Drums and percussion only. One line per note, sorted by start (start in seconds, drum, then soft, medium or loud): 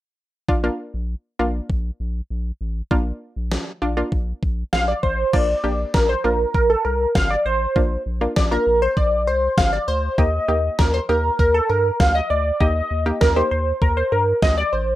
0.49 kick loud
1.70 kick medium
2.91 kick loud
3.52 snare loud
4.12 kick medium
4.43 kick medium
4.73 snare loud
5.03 kick medium
5.33 kick loud
5.33 crash medium
5.94 kick loud
5.94 snare loud
6.54 kick loud
7.15 kick loud
7.15 snare loud
7.76 kick loud
8.36 kick loud
8.36 snare loud
8.97 kick loud
9.58 kick loud
9.58 snare loud
10.18 kick loud
10.79 kick loud
10.79 snare loud
11.39 kick loud
12.00 kick loud
12.00 snare loud
12.61 kick loud
13.21 kick loud
13.21 snare loud
13.82 kick loud
14.42 kick loud
14.42 snare loud